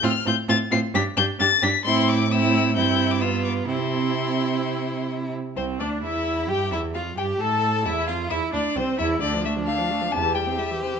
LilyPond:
<<
  \new Staff \with { instrumentName = "Violin" } { \time 4/4 \key c \major \tempo 4 = 132 f'''8 g'''8 a'''8 c''''8 b'''8 g'''8 a'''8 b'''8 | c'''8 d'''8 e'''4 g'''8. d'''16 e'''8 d'''8 | c'''2. r4 | c''8 d''8 e''4 g''8 e''8 f''8 g''8 |
a''4 e''8 f''8 e''8 d''8 c''8 e''8 | d''8 e''8 f''4 a''8 g''8 e''8 c''8 | }
  \new Staff \with { instrumentName = "Violin" } { \time 4/4 \key c \major f'8 f'8 f'8 f'8 g'8 g'8 g'8 g'8 | e'4 e'4 e'4 f'4 | e'2.~ e'8 r8 | c'8 d'8 e'4 g'8 e'8 f'8 g'8 |
a'4 e'8 f'8 e'8 d'8 c'8 e'8 | d'2 g'2 | }
  \new Staff \with { instrumentName = "Viola" } { \time 4/4 \key c \major c'8 c'8 c'8 c'8 d'8 d'8 d'8 d'8 | c'4 c'4 c'4 b4 | c'2.~ c'8 r8 | c'8 d'8 e'4 g'8 e'8 f'8 g'8 |
a'4 e'8 f'8 e'8 d'8 c'8 e'8 | d16 f16 a16 f16 d16 f16 a16 f16 c16 e16 g16 c'16 g16 e16 c16 e16 | }
  \new Staff \with { instrumentName = "Cello" } { \clef bass \time 4/4 \key c \major a,8 a,8 a,8 a,8 g,8 g,8 g,8 g,8 | a,2 g,2 | c2.~ c8 r8 | c,8 d,8 e,4 g,8 e,8 f,8 g,8 |
a,4 e,8 f,8 e,8 d,8 c,8 e,8 | d,4 r4 e,4 r4 | }
>>